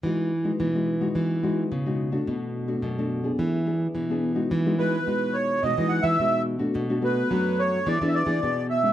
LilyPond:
<<
  \new Staff \with { instrumentName = "Accordion" } { \time 4/4 \key e \major \tempo 4 = 107 r1 | r1 | r8 b'4 cis''8 dis''8 fis''16 e''8. r8 | r8 b'4 cis''8 d''16. e''32 d''4 e''8 | }
  \new Staff \with { instrumentName = "Nylon-string guitar" } { \time 4/4 \key e \major << { <gis dis' fis'>8 r16 <gis dis' fis'>8 <gis dis' fis'>8 <gis dis' fis'>8. <gis dis' fis'>8 r16 <gis dis' fis'>8 <a d' fis'>16~ | <a d' fis'>8. <a d' fis'>8 <a d' fis'>8 <b d' gis'>8. <b d' gis'>8. <b d' gis'>8 <gis dis' fis'>16~ | <gis dis' fis'>16 <gis dis' fis'>16 <gis dis' fis'>16 r16 <gis dis' fis'>4 <gis dis' fis'>16 <gis dis' fis'>8. <gis dis' fis'>8. <a d' fis'>16~ | <a d' fis'>16 <a d' fis'>16 <a d' fis'>8 <a d' fis'>4 <b d' gis'>16 <b d' gis'>8 <b d' gis'>16 <b d' gis'>8 r16 <gis cis' e'>16 | } \\ { e4 b,4 e4 b,4 | b,4 fis,4 e4 b,4 | e4 b,4 e4 b,4 | b,4 fis,4 e4 b,4 | } >> }
  \new Staff \with { instrumentName = "Nylon-string guitar" } { \clef bass \time 4/4 \key e \major e4 e4 e4 cis4 | b,4 b,4 e4 e4 | e4 b,4 b,16 e8 e16 b,4 | b,4 fis4 e16 e8 e16 b,4 | }
>>